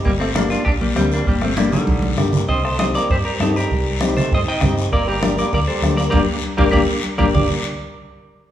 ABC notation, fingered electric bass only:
X:1
M:4/4
L:1/8
Q:1/4=197
K:Gm
V:1 name="Fingered electric bass" clef=bass
G,,,4 B,,,2 D,,2 | G,,,4 B,,,2 G,,2 | C,,4 G,, z G,,2 | C,,4 G,, z G,,2 |
G,,,4 D,, z D,,2 | G,,, z2 G,,, G,,, z2 G,,, | G,,, z6 z |]